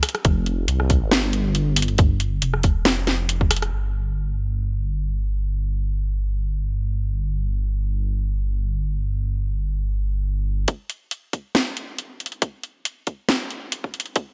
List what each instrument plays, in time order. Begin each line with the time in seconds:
0.03 cross-stick, open hi-hat
0.09 closed hi-hat
0.15 cross-stick, closed hi-hat
0.25 detuned saw bass F1, kick, closed hi-hat
0.46 closed hi-hat
0.68 detuned saw bass C2, closed hi-hat
0.80 cross-stick
0.90 kick, open hi-hat
1.11 detuned saw bass G1, snare
1.33 closed hi-hat
1.55 closed hi-hat
1.76 open hi-hat
1.82 closed hi-hat
1.88 closed hi-hat
1.98 kick, closed hi-hat
2.20 closed hi-hat
2.42 detuned saw bass F1, closed hi-hat
2.54 cross-stick
2.63 kick, open hi-hat
2.85 detuned saw bass F1, snare
3.07 snare, closed hi-hat
3.29 closed hi-hat
3.41 kick
3.51 cross-stick, open hi-hat
3.57 closed hi-hat
3.62 cross-stick, closed hi-hat
3.73 detuned saw bass G1
10.68 kick, closed hi-hat
10.90 closed hi-hat
11.11 closed hi-hat
11.33 kick, closed hi-hat
11.55 snare
11.77 closed hi-hat
11.99 closed hi-hat
12.20 closed hi-hat
12.26 closed hi-hat
12.32 closed hi-hat
12.42 kick, closed hi-hat
12.63 closed hi-hat
12.85 closed hi-hat
13.07 kick, closed hi-hat
13.29 snare
13.51 closed hi-hat
13.72 closed hi-hat
13.84 kick
13.94 closed hi-hat
14.00 closed hi-hat
14.06 closed hi-hat
14.16 kick, closed hi-hat